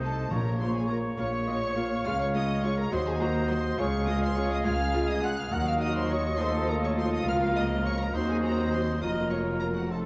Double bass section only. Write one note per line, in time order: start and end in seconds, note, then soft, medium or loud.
0.00 0.21 C2 medium
0.31 1.08 A#1 loud
1.18 1.95 A#1 medium
2.05 2.82 C#2 loud
2.91 3.68 D#2 loud
3.78 4.55 C#2 loud
4.65 5.42 C#2 loud
5.52 7.23 D#2 loud
7.27 8.14 C#2 loud
8.14 9.00 D#2 medium
9.02 10.06 F1 medium